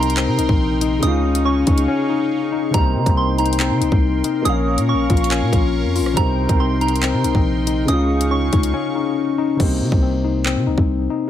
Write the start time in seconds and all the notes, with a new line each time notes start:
Already playing: C2 C3 C4 D#4 A#4 G5 A#5 C6
0.03 closed hi-hat
0.10 closed hi-hat
0.17 C4, clap, closed hi-hat
0.28 C3
0.38 C2 D#4, closed hi-hat
0.49 A#1, kick
0.81 D#4, closed hi-hat
0.99 C#2 C#3 C#4 G#4 F5 C#6 D#6, closed hi-hat
1.04 D#4 F4
1.35 closed hi-hat
1.45 C#4 C#6
1.67 C#2 D#4, kick, closed hi-hat
1.78 closed hi-hat
1.88 C#4
2.10 D#4
2.53 D#4
2.70 C2 C3 A#3 C4 A#4 G5 A#5 C6, kick, closed hi-hat
2.75 D#4 C5
2.96 C3
3.06 C2, kick, closed hi-hat
3.17 C4 C6
3.38 D#4 A#5, closed hi-hat
3.46 closed hi-hat
3.53 closed hi-hat
3.60 C4, clap, closed hi-hat
3.71 C3
3.81 C2 D#4, closed hi-hat
3.92 C2, kick
4.24 D#4, closed hi-hat
4.42 A#1 A#3 C#4 A#4 F5 C#6 D#6, closed hi-hat
4.47 C#5 F5
4.78 A#2, closed hi-hat
4.88 C#4 C#6
4.94 A#1
5.10 A#1 F4, kick, closed hi-hat
5.17 closed hi-hat
5.24 closed hi-hat
5.31 C#4, clap, closed hi-hat
5.42 A#2
5.52 A#1 F4, kick, closed hi-hat
5.85 F2
5.96 F4, open hi-hat
6.01 A#1
6.06 cross-stick
6.13 C2 C3 C4 D#4 G5 A#5 C6, kick, closed hi-hat
6.18 D#4 A#4
6.49 C2, kick, closed hi-hat
6.60 C4 C6
6.81 D#4 A#5, closed hi-hat
6.88 closed hi-hat
6.96 closed hi-hat
7.03 C4, clap, closed hi-hat
7.13 C3
7.24 C2 D#4, closed hi-hat
7.35 A#1, kick
7.67 D#4, closed hi-hat
7.85 C#2 C#3 C#4 G#4 F5 C#6 D#6, closed hi-hat
7.90 D#4 F4
8.21 closed hi-hat
8.31 C#4 C#6
8.53 C#2 D#4, kick, closed hi-hat
8.63 closed hi-hat
8.74 C#4
8.96 D#4
9.38 D#4
9.56 C2 C3 A#3 C4, kick, crash
9.61 D#4 C5
9.81 C3
9.92 C2, kick
10.03 C4
10.24 D#4
10.46 C4, clap
10.56 C3
10.67 C2 D#4
10.78 C2, kick
11.10 D#4